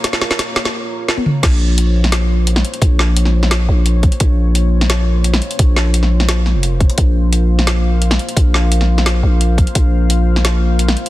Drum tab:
CC |----------------|x---------------|----------------|----------------|
HH |x---x-----------|x---x---x---x-xx|x---x---x---x-xx|x---x---x---x-xx|
SD |ooooo-oo----o---|o------oo----o--|--o--o-oo-------|-------oo----o--|
T1 |-------------o--|----------------|----------------|----------------|
T2 |--------------o-|----------------|----------------|----------------|
BD |----------------|o---------------|o-------------o-|o---------------|

CC |----------------|----------------|----------------|----------------|
HH |x---x---x---x-xx|x---x---x---x-xx|x---x---x---x-xx|x---x---x---x-x-|
SD |--o--o-oo-o-----|-------oo----o--|--o--o-oo-------|-------oo----o--|
T1 |----------------|----------------|----------------|----------------|
T2 |----------------|----------------|----------------|----------------|
BD |o-------------o-|o---------------|o-------------o-|o---------------|